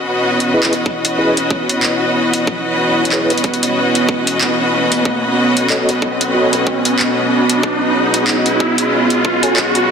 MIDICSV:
0, 0, Header, 1, 6, 480
1, 0, Start_track
1, 0, Key_signature, 4, "minor"
1, 0, Tempo, 645161
1, 1842, Time_signature, 4, 2, 24, 8
1, 7374, End_track
2, 0, Start_track
2, 0, Title_t, "Tonewheel organ"
2, 0, Program_c, 0, 16
2, 400, Note_on_c, 0, 68, 80
2, 401, Note_on_c, 0, 64, 84
2, 401, Note_on_c, 0, 71, 81
2, 402, Note_on_c, 0, 75, 93
2, 551, Note_off_c, 0, 68, 0
2, 552, Note_off_c, 0, 64, 0
2, 552, Note_off_c, 0, 71, 0
2, 552, Note_off_c, 0, 75, 0
2, 879, Note_on_c, 0, 75, 87
2, 880, Note_on_c, 0, 64, 81
2, 881, Note_on_c, 0, 68, 72
2, 881, Note_on_c, 0, 71, 76
2, 1031, Note_off_c, 0, 64, 0
2, 1031, Note_off_c, 0, 75, 0
2, 1032, Note_off_c, 0, 68, 0
2, 1032, Note_off_c, 0, 71, 0
2, 2324, Note_on_c, 0, 71, 67
2, 2325, Note_on_c, 0, 64, 73
2, 2325, Note_on_c, 0, 73, 78
2, 2326, Note_on_c, 0, 68, 66
2, 2473, Note_off_c, 0, 71, 0
2, 2474, Note_off_c, 0, 64, 0
2, 2474, Note_off_c, 0, 68, 0
2, 2474, Note_off_c, 0, 73, 0
2, 4241, Note_on_c, 0, 69, 83
2, 4242, Note_on_c, 0, 66, 92
2, 4242, Note_on_c, 0, 73, 82
2, 4242, Note_on_c, 0, 75, 101
2, 4392, Note_off_c, 0, 66, 0
2, 4392, Note_off_c, 0, 69, 0
2, 4392, Note_off_c, 0, 73, 0
2, 4392, Note_off_c, 0, 75, 0
2, 4720, Note_on_c, 0, 75, 89
2, 4721, Note_on_c, 0, 66, 83
2, 4721, Note_on_c, 0, 73, 76
2, 4722, Note_on_c, 0, 69, 76
2, 4871, Note_off_c, 0, 75, 0
2, 4872, Note_off_c, 0, 66, 0
2, 4872, Note_off_c, 0, 69, 0
2, 4872, Note_off_c, 0, 73, 0
2, 7014, Note_on_c, 0, 66, 95
2, 7015, Note_on_c, 0, 80, 102
2, 7016, Note_on_c, 0, 69, 87
2, 7016, Note_on_c, 0, 73, 85
2, 7137, Note_off_c, 0, 66, 0
2, 7137, Note_off_c, 0, 69, 0
2, 7137, Note_off_c, 0, 73, 0
2, 7137, Note_off_c, 0, 80, 0
2, 7374, End_track
3, 0, Start_track
3, 0, Title_t, "Analog synth pad"
3, 0, Program_c, 1, 89
3, 0, Note_on_c, 1, 59, 78
3, 0, Note_on_c, 1, 64, 70
3, 0, Note_on_c, 1, 73, 69
3, 0, Note_on_c, 1, 75, 84
3, 1821, Note_off_c, 1, 73, 0
3, 1848, Note_on_c, 1, 71, 68
3, 3730, Note_off_c, 1, 64, 0
3, 3746, Note_off_c, 1, 71, 0
3, 3766, Note_on_c, 1, 69, 71
3, 3767, Note_on_c, 1, 66, 71
3, 5665, Note_off_c, 1, 69, 0
3, 5685, Note_on_c, 1, 68, 69
3, 7374, Note_off_c, 1, 59, 0
3, 7374, Note_off_c, 1, 66, 0
3, 7374, Note_off_c, 1, 68, 0
3, 7374, Note_off_c, 1, 75, 0
3, 7374, End_track
4, 0, Start_track
4, 0, Title_t, "String section"
4, 0, Program_c, 2, 48
4, 0, Note_on_c, 2, 61, 77
4, 0, Note_on_c, 2, 66, 84
4, 0, Note_on_c, 2, 71, 69
4, 0, Note_on_c, 2, 75, 80
4, 7374, Note_off_c, 2, 61, 0
4, 7374, Note_off_c, 2, 66, 0
4, 7374, Note_off_c, 2, 71, 0
4, 7374, Note_off_c, 2, 75, 0
4, 7374, End_track
5, 0, Start_track
5, 0, Title_t, "Riser"
5, 0, Program_c, 3, 103
5, 0, Note_on_c, 3, 60, 76
5, 7374, Note_off_c, 3, 60, 0
5, 7374, End_track
6, 0, Start_track
6, 0, Title_t, "Drums"
6, 299, Note_on_c, 9, 42, 64
6, 373, Note_off_c, 9, 42, 0
6, 471, Note_on_c, 9, 39, 116
6, 541, Note_on_c, 9, 42, 54
6, 545, Note_off_c, 9, 39, 0
6, 616, Note_off_c, 9, 42, 0
6, 639, Note_on_c, 9, 36, 101
6, 714, Note_off_c, 9, 36, 0
6, 779, Note_on_c, 9, 42, 67
6, 854, Note_off_c, 9, 42, 0
6, 1021, Note_on_c, 9, 42, 51
6, 1095, Note_off_c, 9, 42, 0
6, 1120, Note_on_c, 9, 36, 101
6, 1194, Note_off_c, 9, 36, 0
6, 1261, Note_on_c, 9, 42, 66
6, 1335, Note_off_c, 9, 42, 0
6, 1360, Note_on_c, 9, 39, 113
6, 1435, Note_off_c, 9, 39, 0
6, 1737, Note_on_c, 9, 42, 67
6, 1811, Note_off_c, 9, 42, 0
6, 1840, Note_on_c, 9, 36, 118
6, 1915, Note_off_c, 9, 36, 0
6, 2271, Note_on_c, 9, 42, 67
6, 2321, Note_on_c, 9, 39, 121
6, 2345, Note_off_c, 9, 42, 0
6, 2395, Note_off_c, 9, 39, 0
6, 2457, Note_on_c, 9, 42, 52
6, 2511, Note_off_c, 9, 42, 0
6, 2511, Note_on_c, 9, 42, 42
6, 2559, Note_off_c, 9, 42, 0
6, 2559, Note_on_c, 9, 42, 33
6, 2560, Note_on_c, 9, 36, 103
6, 2630, Note_off_c, 9, 42, 0
6, 2630, Note_on_c, 9, 42, 27
6, 2635, Note_off_c, 9, 36, 0
6, 2700, Note_off_c, 9, 42, 0
6, 2700, Note_on_c, 9, 42, 66
6, 2775, Note_off_c, 9, 42, 0
6, 2940, Note_on_c, 9, 42, 51
6, 3015, Note_off_c, 9, 42, 0
6, 3040, Note_on_c, 9, 36, 104
6, 3114, Note_off_c, 9, 36, 0
6, 3178, Note_on_c, 9, 42, 65
6, 3252, Note_off_c, 9, 42, 0
6, 3281, Note_on_c, 9, 39, 119
6, 3356, Note_off_c, 9, 39, 0
6, 3658, Note_on_c, 9, 42, 69
6, 3733, Note_off_c, 9, 42, 0
6, 3760, Note_on_c, 9, 36, 120
6, 3834, Note_off_c, 9, 36, 0
6, 4142, Note_on_c, 9, 42, 66
6, 4216, Note_off_c, 9, 42, 0
6, 4241, Note_on_c, 9, 39, 122
6, 4315, Note_off_c, 9, 39, 0
6, 4381, Note_on_c, 9, 42, 54
6, 4455, Note_off_c, 9, 42, 0
6, 4480, Note_on_c, 9, 36, 106
6, 4554, Note_off_c, 9, 36, 0
6, 4620, Note_on_c, 9, 42, 63
6, 4694, Note_off_c, 9, 42, 0
6, 4858, Note_on_c, 9, 42, 51
6, 4932, Note_off_c, 9, 42, 0
6, 4960, Note_on_c, 9, 36, 107
6, 5034, Note_off_c, 9, 36, 0
6, 5098, Note_on_c, 9, 42, 63
6, 5173, Note_off_c, 9, 42, 0
6, 5202, Note_on_c, 9, 39, 116
6, 5276, Note_off_c, 9, 39, 0
6, 5576, Note_on_c, 9, 42, 67
6, 5651, Note_off_c, 9, 42, 0
6, 5680, Note_on_c, 9, 36, 121
6, 5754, Note_off_c, 9, 36, 0
6, 6055, Note_on_c, 9, 42, 62
6, 6130, Note_off_c, 9, 42, 0
6, 6156, Note_on_c, 9, 39, 119
6, 6230, Note_off_c, 9, 39, 0
6, 6293, Note_on_c, 9, 42, 51
6, 6367, Note_off_c, 9, 42, 0
6, 6400, Note_on_c, 9, 36, 108
6, 6475, Note_off_c, 9, 36, 0
6, 6533, Note_on_c, 9, 42, 62
6, 6608, Note_off_c, 9, 42, 0
6, 6773, Note_on_c, 9, 42, 49
6, 6848, Note_off_c, 9, 42, 0
6, 6879, Note_on_c, 9, 36, 108
6, 6954, Note_off_c, 9, 36, 0
6, 7016, Note_on_c, 9, 42, 64
6, 7090, Note_off_c, 9, 42, 0
6, 7116, Note_on_c, 9, 39, 119
6, 7190, Note_off_c, 9, 39, 0
6, 7255, Note_on_c, 9, 42, 35
6, 7329, Note_off_c, 9, 42, 0
6, 7374, End_track
0, 0, End_of_file